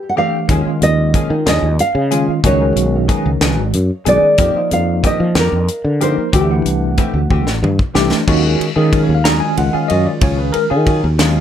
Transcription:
Already playing: G4
0.09 F#5
0.16 E3 A3 C4 D4 G4 F5
0.48 D#2 D#3 F3 G#3 A#3 C#4 F4 G#4, kick, closed hi-hat
0.65 D#3 G#3 C#4 F4, muted fretless electric bass stroke
0.82 D#2 D#5, closed hi-hat
1.14 F3 A#3 C#4 G#4, kick, closed hi-hat
1.30 D#3
1.46 D#2 F3 A#3 C#4 G#4 D#5, snare, closed hi-hat
1.62 D#2
1.79 F5, closed hi-hat
1.95 C#3
2.11 D#3 G#3 A#3 C#4 F4 G#4, closed hi-hat
2.28 muted fretless electric bass stroke
2.44 C#2 D#3 F#3 G#3 B3 C#4 D#4 F#4 G#4 C#5, kick, closed hi-hat
2.61 D#3 G#3 C#4 F#4
2.76 B1, closed hi-hat
3.08 F#3 B3 D#4 G#4, kick, closed hi-hat
3.26 C#2
3.41 C#2 F#3 B3 D#4 G#4, snare, closed hi-hat
3.58 G#1
3.73 F#2, closed hi-hat
4.05 B1 D#3 G#3 B3 C#4 D#4 G#4 D5, closed hi-hat
4.23 muted fretless electric bass stroke
4.38 F2 D#3 F3 A#3 C4 D#4 G4, kick, closed hi-hat
4.55 F3 A#3 D#4 F4, muted fretless electric bass stroke
4.71 F2 F5, closed hi-hat
5.04 D#3 A#3 C4 G4 D#5, kick, closed hi-hat
5.20 F3
5.35 F2 D#3 A#3 C4 G4 A#4, snare, closed hi-hat
5.52 F2
5.68 closed hi-hat
5.84 D3
6.00 F3 A#3 C4 D#4 G4 A#4 C5, closed hi-hat
6.18 muted fretless electric bass stroke
6.33 D2 E3 A3 C4 D4 G4, kick, closed hi-hat
6.49 E3 A3 D4 F#5
6.65 C2, closed hi-hat
6.97 E3 A3 C4 G4, kick, closed hi-hat
7.14 D2 F#4
7.30 D2 E3 A3 C4 G4, kick
7.47 A1, snare
7.63 G2, mid tom
7.79 kick
7.94 C2 E3 A3 C4 D4 G4, snare
8.12 muted fretless electric bass stroke, snare
8.27 D#2 D#3 F#3 G#3 C#4 F4 F#4 G#4, kick, crash
8.43 C#4 F4 G#4
8.60 muted fretless electric bass stroke, ride
8.76 D#3 G#3 C#4 F4 G#4
8.92 F#3 C#4 F4 G#4 A#4, kick, ride
9.03 C#5
9.09 D#2
9.15 F5
9.23 D#3 F#3 G#3 C#4 F4 F#4 G#4 A#5, snare, ride
9.40 C#4 F4 G#4 G#5
9.57 C#2 D#3 G#3 C#4 F4 F#5, ride
9.73 C#4 F4 G#4 F5, muted fretless electric bass stroke
9.88 F#2 F#3 C#4 F4 G#4 D#5, ride
10.06 D5
10.21 C#2 F#3 C#4 F4 G#4 C#5, kick, ride
10.37 C#4 F4 G#4 B4
10.53 A#4, muted fretless electric bass stroke, ride
10.70 D#3 C#4 F4 G#4
10.85 F#3 C#4 F4 F#4 G#4, kick, ride
11.04 D#2
11.18 D#3 F#3 G#3 C#4 D#4 F4 G#4, snare, ride
11.36 C#4 F4 G#4

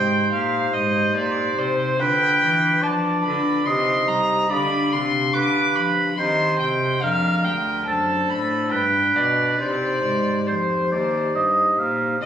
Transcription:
Already playing: G#2 D#4 G4 C5 G5
0.32 A#2 F5
0.74 G#2 D#5
1.15 A#2 C5 D5
1.58 C3 C5
1.97 D3 D4 F4 B4 G5
2.42 E3
2.82 F3 D5 A5
3.24 D3 B5
3.63 D#4 G4 C5 C6
3.67 C3 D#5
4.08 C2 A#5
4.47 D4 G4 F5 B5
4.51 D3 D5
4.92 C3 C6
5.33 D3 B4 D6
5.75 F3 B5
6.15 C4 G4 D#5 C6
6.19 D#3 C5
6.60 C3 G5
6.99 D4 G#4 D5 F5
7.03 F2 A#4
7.44 D2 G5
7.83 D4 C5 D5 A5
7.87 F#2 A4
8.30 A2 B5
8.68 D4 B4 D5 G5
8.72 G2
9.16 B2 D5
9.56 C3 D#4 G4 C5 D5
9.60 C3 C5
10.04 G#2
10.47 F2 C5
10.92 D#2 D5
11.34 G2 D#5
11.79 A#2 F5
12.22 C3 D#5

